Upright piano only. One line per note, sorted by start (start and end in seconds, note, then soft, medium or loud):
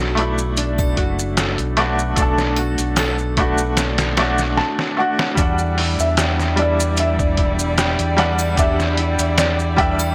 0.00 0.12 A3 medium
0.00 0.14 D4 medium
0.00 0.15 F#4 medium
0.15 1.72 A3 medium
0.15 1.74 D4 medium
0.21 1.75 E4 medium
1.77 2.13 A3 medium
1.77 2.13 D4 medium
1.77 2.14 F#4 loud
2.16 3.32 A3 medium
2.16 3.34 D4 medium
2.22 3.35 A4 medium
3.37 4.14 A3 medium
3.37 4.14 D4 medium
3.37 4.15 F#4 loud
4.18 4.93 A3 medium
4.18 4.94 D4 medium
4.18 4.95 F#4 loud
4.97 5.33 A3 medium
4.97 5.34 D4 medium
4.97 5.34 F#4 loud
5.35 6.52 G3 medium
5.35 6.53 D4 medium
5.42 6.55 F#5 medium
6.56 8.12 G3 medium
6.56 8.14 D4 medium
6.62 8.15 E4 medium
8.17 8.53 G3 medium
8.17 8.53 D4 medium
8.17 8.54 F#5 loud
8.56 9.72 G3 medium
8.56 9.74 D4 medium
8.62 9.75 G4 medium
9.76 10.15 G3 medium
9.76 10.15 D4 medium
9.76 10.15 E5 loud